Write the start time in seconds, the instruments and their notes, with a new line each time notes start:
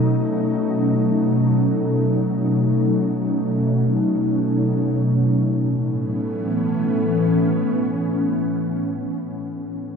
Already playing: ambient pad B2 F#3 C#4 D#4, synth drone A3 A4
5.06 ambient pad A2, synth drone A3 A4
5.19 ambient pad E3
5.31 ambient pad B3
5.45 ambient pad C#4